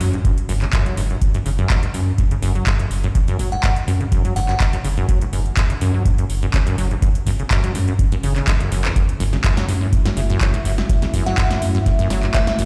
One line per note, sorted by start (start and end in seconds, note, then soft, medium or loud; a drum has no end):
0.01 0.19 F#2 medium
0.01 0.11 F#3 medium
0.01 open hi-hat loud
0.13 0.17 G2 medium
0.13 closed hi-hat soft
0.25 0.32 F#2 medium
0.25 kick loud
0.25 closed hi-hat medium
0.38 closed hi-hat soft
0.49 0.68 F#1 medium
0.49 0.53 F#2 loud
0.49 open hi-hat loud
0.62 0.66 C#3 medium
0.62 clap soft
0.62 closed hi-hat soft
0.73 0.84 F#2 loud
0.73 kick loud
0.73 clap loud
0.73 closed hi-hat medium
0.86 0.95 F#3 medium
0.86 closed hi-hat soft
0.97 1.16 F#1 loud
0.97 1.02 G2 medium
0.97 open hi-hat loud
1.10 1.17 F#2 medium
1.10 closed hi-hat soft
1.22 kick loud
1.22 closed hi-hat medium
1.34 1.38 F#2 loud
1.34 closed hi-hat soft
1.46 1.64 F#1 loud
1.46 1.50 C#3 medium
1.46 open hi-hat loud
1.59 1.68 F#2 loud
1.59 closed hi-hat soft
1.70 1.81 F#3 medium
1.70 kick loud
1.70 clap loud
1.70 closed hi-hat medium
1.83 1.87 G2 medium
1.83 closed hi-hat soft
1.94 2.01 F#2 medium
1.94 2.13 F#2 medium
1.94 open hi-hat loud
2.18 2.23 F#2 loud
2.18 kick loud
2.18 closed hi-hat medium
2.31 2.35 C#3 medium
2.31 closed hi-hat soft
2.42 2.61 F#1 medium
2.42 2.53 F#2 loud
2.42 open hi-hat loud
2.55 2.65 F#3 medium
2.55 closed hi-hat soft
2.67 2.71 G2 medium
2.67 kick loud
2.67 clap loud
2.67 closed hi-hat medium
2.80 2.86 F#2 medium
2.80 closed hi-hat soft
2.91 3.10 F#1 medium
2.91 open hi-hat loud
3.04 3.08 F#2 loud
3.04 closed hi-hat soft
3.15 3.19 C#3 medium
3.15 kick loud
3.15 closed hi-hat medium
3.28 3.37 F#2 loud
3.28 closed hi-hat soft
3.39 3.58 F#1 loud
3.39 3.50 F#3 medium
3.39 kick medium
3.39 open hi-hat medium
3.52 3.56 G2 medium
3.52 3.59 F#5 medium
3.52 closed hi-hat soft
3.63 3.71 F#2 medium
3.63 3.72 F#5 medium
3.63 kick loud
3.63 clap loud
3.63 closed hi-hat medium
3.76 closed hi-hat medium
3.88 3.92 F#2 loud
3.88 4.06 F#2 medium
3.88 open hi-hat medium
4.01 4.04 C#3 medium
4.01 closed hi-hat soft
4.12 4.23 F#2 loud
4.12 kick loud
4.12 closed hi-hat medium
4.25 4.34 F#3 medium
4.25 closed hi-hat soft
4.36 4.55 F#1 medium
4.36 4.40 G2 medium
4.36 4.44 F#5 medium
4.36 open hi-hat loud
4.49 4.55 F#2 medium
4.49 4.56 F#5 medium
4.49 clap soft
4.49 closed hi-hat soft
4.60 kick loud
4.60 clap loud
4.60 closed hi-hat medium
4.73 4.77 F#2 loud
4.73 closed hi-hat medium
4.84 5.03 F#1 medium
4.84 4.89 C#3 medium
4.84 open hi-hat loud
4.97 5.07 F#2 loud
4.97 closed hi-hat soft
5.09 5.19 F#3 medium
5.09 kick loud
5.09 closed hi-hat medium
5.21 5.25 G2 medium
5.21 closed hi-hat medium
5.33 5.52 F#1 loud
5.33 5.40 F#2 medium
5.33 open hi-hat medium
5.46 closed hi-hat soft
5.57 5.61 F#2 loud
5.57 kick loud
5.57 clap loud
5.57 closed hi-hat medium
5.70 5.74 C#3 medium
5.70 closed hi-hat medium
5.81 6.00 F#2 medium
5.81 5.92 F#2 loud
5.81 open hi-hat loud
5.94 6.03 F#3 medium
6.05 6.10 G2 medium
6.05 kick loud
6.05 closed hi-hat medium
6.18 6.25 F#2 medium
6.18 closed hi-hat medium
6.30 6.48 F#1 medium
6.30 open hi-hat medium
6.42 6.46 F#2 loud
6.42 closed hi-hat soft
6.54 6.58 C#3 medium
6.54 kick loud
6.54 clap loud
6.54 closed hi-hat medium
6.67 6.76 F#2 loud
6.67 closed hi-hat medium
6.78 6.97 F#1 medium
6.78 6.89 F#3 medium
6.78 open hi-hat loud
6.91 6.95 G2 medium
6.91 closed hi-hat soft
7.02 7.09 F#2 medium
7.02 kick loud
7.02 closed hi-hat medium
7.15 closed hi-hat medium
7.26 7.45 F#1 loud
7.26 7.31 F#2 loud
7.26 kick medium
7.26 open hi-hat loud
7.39 7.43 C#3 medium
7.39 closed hi-hat soft
7.51 7.61 F#2 loud
7.51 kick loud
7.51 clap loud
7.51 closed hi-hat medium
7.63 7.73 F#3 medium
7.63 closed hi-hat medium
7.75 7.93 F#2 medium
7.75 7.79 G2 medium
7.75 open hi-hat loud
7.88 7.94 F#2 medium
7.88 closed hi-hat soft
7.99 kick loud
7.99 closed hi-hat medium
8.12 8.16 F#2 loud
8.12 closed hi-hat medium
8.23 8.42 F#1 loud
8.23 8.34 C#3 medium
8.23 open hi-hat medium
8.36 8.49 C#3 medium
8.36 clap soft
8.36 closed hi-hat soft
8.47 8.54 F#2 loud
8.47 kick loud
8.47 clap loud
8.47 closed hi-hat medium
8.60 8.70 F#2 medium
8.60 closed hi-hat medium
8.72 8.90 F#1 loud
8.72 8.86 F#2 medium
8.72 open hi-hat loud
8.85 8.94 E2 medium
8.85 clap medium
8.85 closed hi-hat soft
8.96 9.03 F#2 medium
8.96 12.65 A3 medium
8.96 12.65 F#4 medium
8.96 12.65 E5 medium
8.96 kick loud
8.96 closed hi-hat medium
9.09 closed hi-hat medium
9.20 9.39 F#1 loud
9.20 9.24 F#2 loud
9.20 open hi-hat medium
9.33 9.37 C#3 medium
9.33 snare soft
9.33 closed hi-hat soft
9.44 9.55 F#2 loud
9.44 kick loud
9.44 clap loud
9.44 closed hi-hat medium
9.57 9.66 F#3 medium
9.57 snare medium
9.57 closed hi-hat medium
9.68 9.87 F#2 medium
9.68 9.73 G2 medium
9.68 open hi-hat loud
9.81 9.87 F#2 medium
9.93 kick loud
9.93 closed hi-hat medium
10.05 10.09 F#2 loud
10.05 snare medium
10.05 closed hi-hat medium
10.17 10.35 F#1 medium
10.17 10.21 C#3 medium
10.17 open hi-hat loud
10.30 10.39 F#2 loud
10.30 closed hi-hat soft
10.41 10.52 F#3 medium
10.41 kick loud
10.41 clap loud
10.41 closed hi-hat medium
10.54 10.58 G2 medium
10.54 closed hi-hat medium
10.65 10.84 F#1 medium
10.65 10.72 F#2 medium
10.65 open hi-hat loud
10.78 snare medium
10.78 closed hi-hat soft
10.89 10.94 F#2 loud
10.89 kick loud
10.89 closed hi-hat medium
11.02 11.06 C#3 medium
11.02 snare soft
11.02 closed hi-hat medium
11.14 11.32 F#1 loud
11.14 11.24 F#2 loud
11.14 kick medium
11.14 open hi-hat loud
11.26 11.36 F#3 medium
11.26 11.34 F#5 medium
11.26 snare soft
11.26 closed hi-hat soft
11.38 11.42 G2 medium
11.38 11.46 F#5 medium
11.38 kick loud
11.38 clap loud
11.38 closed hi-hat medium
11.51 11.57 F#2 medium
11.51 snare medium
11.51 closed hi-hat medium
11.62 11.81 F#2 medium
11.62 open hi-hat loud
11.75 11.79 F#2 loud
11.75 closed hi-hat soft
11.86 11.90 C#3 medium
11.86 kick loud
11.86 snare soft
11.86 closed hi-hat medium
11.99 12.08 F#2 loud
11.99 closed hi-hat medium
12.10 12.29 F#1 medium
12.10 12.21 F#3 medium
12.10 snare medium
12.10 open hi-hat loud
12.23 12.27 G2 medium
12.23 clap soft
12.23 closed hi-hat soft
12.34 12.42 F#2 medium
12.34 12.43 E5 medium
12.34 kick loud
12.34 clap loud
12.34 closed hi-hat medium
12.47 12.55 E5 medium
12.47 snare medium
12.47 closed hi-hat medium
12.59 12.65 F#1 medium
12.59 12.63 F#2 loud
12.59 open hi-hat loud